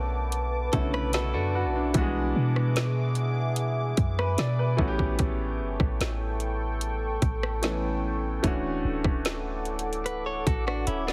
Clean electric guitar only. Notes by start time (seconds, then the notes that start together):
0.73 F#4 A4
0.94 B4
1.14 F#4 A4
1.34 D4 F#4
10.06 B4
10.26 A4 C#5
10.47 F#4 A4
10.67 D4 F#4
10.87 C#4 E4
11.07 B3 D4